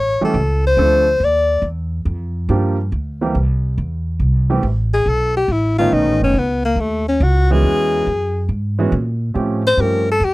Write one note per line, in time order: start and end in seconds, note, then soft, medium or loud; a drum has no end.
0.00 0.19 A1 medium
0.00 0.23 C#5 medium
0.21 0.34 E3 medium
0.21 0.34 G3 medium
0.21 0.34 A3 medium
0.21 0.34 C#4 medium
0.21 0.34 G4 medium
0.21 0.63 A4 medium
0.21 muted upright bass stroke soft
0.34 0.76 C#2 medium
0.67 1.26 C5 loud
0.77 1.19 D2 medium
0.77 1.04 F3 medium
0.77 1.04 A3 medium
0.77 1.04 C4 medium
0.77 1.04 D4 medium
0.77 1.04 A4 medium
1.20 1.61 D#2 medium
1.24 1.65 D5 medium
1.62 2.04 E2 medium
2.05 2.48 F2 medium
2.49 2.91 G2 medium
2.49 2.75 F3 medium
2.49 2.76 G3 medium
2.49 2.76 A#3 medium
2.49 2.76 D4 medium
2.49 2.76 G4 medium
2.92 3.34 D2 medium
3.21 3.34 E3 medium
3.21 3.34 G3 medium
3.21 3.34 A#3 medium
3.21 3.34 C4 medium
3.21 3.34 G4 medium
3.35 3.76 C2 medium
3.78 4.19 E2 medium
4.19 4.62 C2 medium
4.50 4.62 E3 medium
4.50 4.62 G3 medium
4.50 4.63 A3 medium
4.50 4.63 C4 medium
4.50 4.63 G4 medium
4.63 5.05 A1 medium
4.94 5.11 G#4 medium
5.06 5.48 B1 medium
5.06 5.36 A4 medium
5.37 5.54 G4 medium
5.48 5.90 A1 medium
5.52 5.78 E4 medium
5.79 6.33 D#3 medium
5.79 6.33 A3 medium
5.79 6.33 B3 medium
5.79 6.33 C#4 medium
5.79 6.33 D#4 medium
5.79 5.95 F4 medium
5.92 6.06 B1 medium
5.92 6.22 D#4 medium
6.06 6.20 A1 medium
6.20 6.33 F#1 medium
6.20 6.40 C#4 medium
6.34 6.75 C#2 medium
6.39 6.65 B3 medium
6.65 6.82 A#3 medium
6.76 7.19 D#2 medium
6.80 7.08 A3 medium
7.08 7.25 C#4 medium
7.20 7.62 C#2 loud
7.20 7.54 F#4 medium
7.51 8.04 E3 medium
7.51 8.04 G#3 medium
7.51 8.04 B3 medium
7.51 8.05 C#4 medium
7.51 8.05 F#4 medium
7.51 8.51 G#4 medium
7.63 8.05 E2 medium
8.07 8.48 F#2 medium
8.49 8.91 G#2 medium
8.79 8.91 E3 medium
8.79 8.91 G#3 medium
8.79 8.91 B3 medium
8.79 8.92 C#4 medium
8.79 8.92 F#4 medium
8.92 9.34 A#2 medium
9.34 9.77 A2 medium
9.34 9.61 F3 medium
9.34 9.61 A3 medium
9.34 9.61 C4 medium
9.34 9.61 C#4 medium
9.34 9.61 G4 medium
9.67 9.83 C5 loud
9.77 10.19 G2 medium
9.77 10.04 F3 medium
9.77 10.04 A3 medium
9.77 10.04 C4 soft
9.77 10.05 C#4 medium
9.77 10.05 G4 medium
9.77 10.08 A#4 medium
10.11 10.26 A4 medium
10.20 10.34 F2 medium
10.24 10.34 G4 medium